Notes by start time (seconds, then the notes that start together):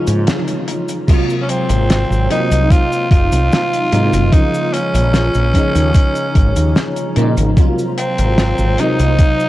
Already playing: C#3 F3 G#3 A#3 D#4 F4 G#4 C#5 A#5
0.07 G#2, closed hi-hat, cabasa
0.27 snare, closed hi-hat, cabasa
0.48 closed hi-hat, cabasa
0.68 closed hi-hat
0.89 closed hi-hat, cabasa
1.07 C3 F#3 G#3 A#3 F4 C5 F5 A#5, kick, closed hi-hat, crash, cabasa
1.30 cabasa
1.42 C#4
1.49 C4, closed hi-hat
1.69 G#1, closed hi-hat, cabasa
1.90 snare, closed hi-hat, cabasa
2.10 G#1, cabasa
2.30 C3 F#3 G#3 A#3 D#4, closed hi-hat
2.51 C2, closed hi-hat, cabasa
2.70 F4, kick, closed hi-hat, cabasa
2.92 cabasa
3.11 F#1 F4, kick, closed hi-hat
3.32 C2, closed hi-hat, cabasa
3.52 snare, closed hi-hat, cabasa
3.73 closed hi-hat, cabasa
3.92 G#2 C3 F#3 G#3 A#3 D#4, closed hi-hat
4.13 F#1, closed hi-hat, cabasa
4.31 C#3 F3 G#3 A#3 D#4 F4 G#4 C#5, kick, closed hi-hat, cabasa
4.54 cabasa
4.73 C#4, closed hi-hat
4.94 A#1, closed hi-hat, cabasa
5.14 snare, closed hi-hat, cabasa
5.34 A#1, cabasa
5.54 C#3 F3 G#3 A#3 D#4, kick, closed hi-hat
5.75 D#2, closed hi-hat, cabasa
5.94 kick, closed hi-hat, cabasa
6.15 cabasa
6.35 G#1, kick, closed hi-hat
6.56 D#2, closed hi-hat, cabasa
6.76 snare, closed hi-hat, cabasa
6.96 closed hi-hat, cabasa
7.16 A#2 C#3 F3 G#3 A#3 D#4, closed hi-hat
7.37 G#1, closed hi-hat, cabasa
7.56 C3 F#3 G#3 A#3 F4 C5 F5, kick, closed hi-hat, cabasa
7.78 cabasa
7.98 C4, closed hi-hat
8.18 G#1, closed hi-hat, cabasa
8.38 snare, closed hi-hat, cabasa
8.58 G#1, cabasa
8.78 C3 F#3 G#3 A#3 D#4, closed hi-hat
8.99 C2, closed hi-hat, cabasa
9.19 kick, closed hi-hat, cabasa
9.40 cabasa